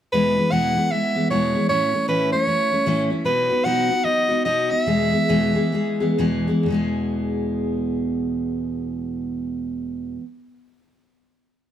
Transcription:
0.12 E2 B2 E3 G#3 B3 E4 B4
0.36 E3 G#3 B3 E4
0.51 E2 B2 E3 G#3 B3 E4 F#5
0.76 E3 G#3 B3 E4
0.91 E3 G#3 B3 E4 E5
1.15 E3 G#3 B3 E4
1.30 E2 B2 E3 G#3 B3 E4 C#5
1.54 E3 G#3 B3 E4
1.69 A2 E3 A3 C#4 E4 C#5
1.93 A3 C#4 E4
2.08 A2 E3 A3 C#4 E4 B4
2.32 A3 C#4 E4 C#5
2.47 E3 A3 C#4 E4
2.71 A3 C#4 E4
2.86 A2 E3 A3 C#4 E4
3.10 A3 C#4 E4
3.25 B2 F#3 B3 D#4 F#4 B4
3.49 B3 D#4 F#4
3.64 B2 F#3 B3 D#4 F#4 F#5
3.89 B3 D#4 F#4
4.04 F#3 B3 D#4 F#4 D#5
4.29 B3 D#4 F#4
4.45 B2 F#3 B3 D#4 F#4 D#5
4.70 B3 D#4 F#4 D#5
4.82 E5
4.86 E2 B2 E3 G#3 B3 G#4
5.12 E3 G#3 B3 G#4
5.28 E2 B2 E3 G#3 B3 G#4
5.55 E3 G#3 B3 G#4
5.72 E3 G#3 B3 G#4
6.00 E3 G#3 B3 G#4
6.18 E2 B2 E3 G#3 B3 G#4
6.47 E3 G#3 B3 G#4
6.63 E2 B2
6.68 E3 G#3 B3
6.74 G#4

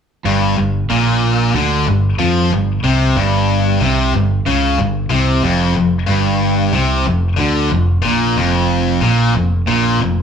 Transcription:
0.26 G1 G2
0.58 G1 G2
0.90 A#1 A#2
1.54 D2 D3
1.86 G1 G2
2.19 F2 F3
2.51 G1 G2
2.83 C2 C3
3.16 G1 G2
3.80 C2 C3
4.13 G1 G2
4.46 C#2 C#3
4.78 G1 G2
5.10 C2 C3
5.43 F1 F2
5.76 F1 F2
6.07 G1 G2
6.72 C2 C3
7.05 F1 F2
7.37 D2 D3
7.70 F1 F2
7.75 F2
8.02 A#1 A#2
8.37 F1 F2
9.01 A#1 A#2
9.34 F1 F2
9.68 A#1 A#2
10.00 F1 F2

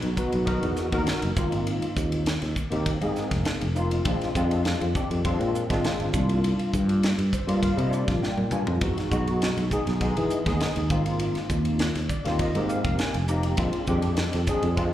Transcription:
0.02 B1, ride
0.16 B3 D#4 F#4 B4, muted fretless electric bass stroke, kick, hi-hat pedal
0.32 B1, ride
0.45 B3 D#4 F#4 A#4, kick, ride
0.63 E2, ride
0.76 snare, hi-hat pedal
0.92 D#2 B3 D#4 F#4 A#4, kick, ride
1.07 snare, ride
1.22 F#1, ride
1.36 G#1 A#3 C4 D#4 F4, kick, hi-hat pedal
1.52 ride
1.67 ride
1.82 muted fretless electric bass stroke, ride
1.97 D#2, kick, hi-hat pedal
2.12 ride
2.26 snare, ride
2.42 D#2, snare, ride
2.56 kick, hi-hat pedal
2.70 D#2 A#3 C4 D#4 G4, ride
2.86 kick, ride
3.01 G#2 A#3 C4 D#4 G#4, ride
3.16 snare, hi-hat pedal
3.31 F1, kick, snare, ride
3.45 snare, ride
3.61 F1, ride
3.75 A#3 C4 D#4 F4, hi-hat pedal
3.91 ride
4.04 A#1 G#3 C4 D4 F4, kick, ride
4.21 muted fretless electric bass stroke, snare, ride
4.35 F2 G#3 C4 D4 F4, kick, hi-hat pedal
4.51 ride
4.65 snare, ride
4.81 F2, ride
4.94 G#3 C4 D4 G4, kick, hi-hat pedal
5.10 F2, ride
5.24 G#3 C4 D4 F4, kick, ride
5.40 A#2, ride
5.55 hi-hat pedal
5.69 G#1 G#3 C4 D4 F4, kick, snare, ride
5.84 snare, ride
5.99 G#1, ride
6.12 C2 G3 A#3 D4 F4, kick, hi-hat pedal
6.29 ride
6.44 ride
6.59 muted fretless electric bass stroke, ride
6.74 G2, kick, hi-hat pedal
6.89 ride
7.03 snare, ride
7.18 G2, ride
7.33 C5, kick, hi-hat pedal
7.47 G2 G3 A#3 D4 F4 D5, ride
7.63 F5, kick, ride
7.76 C3 G3 A#3 D4 F4 D#5, ride
7.91 D5, hi-hat pedal
8.07 A#1 F5, kick, snare, ride
8.22 G5, snare
8.37 A#2, high tom
8.51 G2 G3 A#3 D4 F4 G#5, hi-hat pedal, mid tom
8.67 F2, floor tom
8.81 E2 G#3 B3 D#4 F#4, kick, ride
8.98 muted fretless electric bass stroke, snare, ride
9.11 B1 G#3 B3 D#4 F#4, kick, hi-hat pedal
9.28 ride
9.42 snare, ride
9.57 B1, ride
9.71 G#3 B3 D#4 G#4, kick, hi-hat pedal
9.87 B1, snare, ride
10.01 G#3 B3 D#4 G#4, kick, ride
10.17 E3, ride
10.30 hi-hat pedal
10.45 D#2 G#3 B3 D#4 G#4, kick, snare, ride
10.60 snare, ride
10.76 D#2, ride
10.90 G#1 A#3 C4 D#4 F4, kick, hi-hat pedal
11.06 ride
11.20 ride
11.35 muted fretless electric bass stroke, snare, ride
11.49 D#2, kick, hi-hat pedal
11.65 ride
11.79 snare, ride
11.95 D#2, snare, ride
12.09 D5, muted fretless electric bass stroke, kick, hi-hat pedal
12.25 D#2 A#3 C4 D#4 F4, snare, ride
12.39 D#5, kick, ride
12.55 G#2 A#3 C4 D#4 G4, ride
12.69 F5, hi-hat pedal
12.84 F1 F5, kick, ride
12.99 G#5, snare, ride
13.14 F1, ride
13.28 A#3 C4 D#4 G4 A#5, hi-hat pedal
13.43 ride
13.57 A#1 G#3 C4 D4 F4, kick, ride
13.73 muted fretless electric bass stroke, ride
13.87 F2 G#3 C4 D4 G4, kick, hi-hat pedal
14.02 ride
14.17 snare, ride
14.33 F2, snare, ride
14.47 G#3 C4 D4 G#4, muted fretless electric bass stroke, kick, hi-hat pedal
14.63 F2, ride
14.76 G#3 C4 D4 F4, kick, ride

